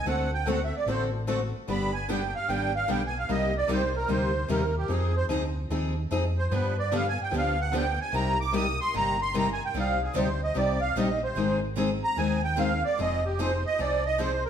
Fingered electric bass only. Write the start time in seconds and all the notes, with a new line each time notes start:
0.05 D2
0.86 A1
1.68 G1
2.48 G#1
2.89 B1
3.29 C2
3.69 C2
4.09 D2
4.49 D#2
4.89 F2
5.29 D2
5.70 D#2
6.11 F2
6.51 G2
7.32 D2
8.13 C2
8.94 G1
9.74 C2
10.15 D2
10.55 C2
10.96 A#1
11.36 G#1
12.17 D#2
12.99 F1
13.79 C2